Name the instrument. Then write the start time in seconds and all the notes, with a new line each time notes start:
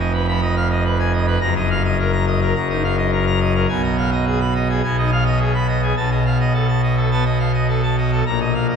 pipe organ
Already playing: F1 F2
0.00 D#5
0.14 B4
0.28 F3 B5
0.42 D#5
0.56 F5
0.71 D#5
0.85 B4
0.99 G#5
1.13 D#5
1.27 B4
1.41 F#1 F#2 A#5
1.56 D#5
1.71 F5
1.85 D#5
1.99 A#4
2.12 A#5
2.27 D#5
2.42 A#4
2.55 F#1 F#2 A#5
2.70 D#4 D#5
2.84 F5
2.98 D#5
3.13 A#4
3.27 A#5
3.41 D#5
3.55 A#4
3.69 B1 B2 G#5
3.83 D#5
3.98 F5
4.12 D#5
4.27 G#4
4.41 B5
4.55 D#5
4.70 G#4
4.83 B1 B2 G#5
4.98 D#4 D#5
5.12 F5
5.26 D#5
5.41 G#4
5.54 B5
5.68 D#5
5.83 G#4
5.97 B1 B2 A5
6.11 D#5
6.26 F5
6.40 D#5
6.54 A4
6.69 A5
6.83 D#5
6.97 A4
7.11 B3 A5
7.25 D#5
7.39 F5
7.54 D#5
7.68 A4
7.83 A5
7.98 D#5
8.12 A4
8.26 A#1 A#2 A#5
8.40 D#5
8.55 F5
8.69 D#5